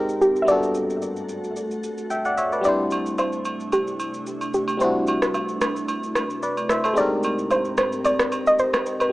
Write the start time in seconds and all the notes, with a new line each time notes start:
Already playing: G#2 G#3 C4 D#4 G4 A#4
0.09 shaker
0.21 G4, shaker
0.36 shaker
0.42 G3 E5
0.46 G2 A3 B3 D4 F#4 A4 D5, shaker
0.52 A4
0.63 shaker
0.75 shaker
0.90 shaker
1.02 shaker
1.16 shaker
1.29 shaker
1.44 shaker
1.56 shaker
1.71 shaker
1.83 shaker
1.98 shaker
2.10 E5 G5, shaker
2.25 D5 F#5, shaker
2.37 C#5 E5, shaker
2.52 B4 D5, shaker
2.61 C3 G3 C4 D4 E4 D5, shaker
2.66 E4 C5
2.91 high agogo, shaker
3.06 shaker
3.18 C5, high agogo, low woodblock, shaker
3.32 shaker
3.45 high agogo, shaker
3.60 shaker
3.72 G4, high agogo, shaker
3.87 shaker
4.00 high agogo, shaker
4.14 shaker
4.27 shaker
4.41 high agogo, shaker
4.54 G4, shaker
4.68 high agogo, shaker
4.77 G3 C4 D4, shaker
4.81 E4 F#4 C5
5.07 high agogo, shaker
5.22 cross-stick, shaker
5.34 high agogo, low woodblock, shaker
5.49 shaker
5.61 cross-stick, high agogo, shaker
5.76 shaker
5.88 high agogo, shaker
6.03 shaker
6.15 cross-stick, high agogo, shaker
6.30 shaker
6.43 B4 D5, shaker
6.57 high agogo, shaker
6.69 C5 E5, cross-stick, shaker
6.84 A4 C5, high agogo, shaker
6.94 G#2 G#3 C4 D#4 G4 A#4, shaker
6.98 G4 A#4 D5
7.23 high agogo, shaker
7.39 shaker
7.51 C5, high agogo, low woodblock, shaker
7.65 shaker
7.77 C5, cross-stick, high agogo, shaker
7.93 shaker
8.05 D5, high agogo, shaker
8.19 cross-stick, shaker
8.32 high agogo, shaker
8.47 D#5, shaker
8.59 C5, shaker
8.73 cross-stick, high agogo, shaker
8.86 shaker
9.00 B4, high agogo, shaker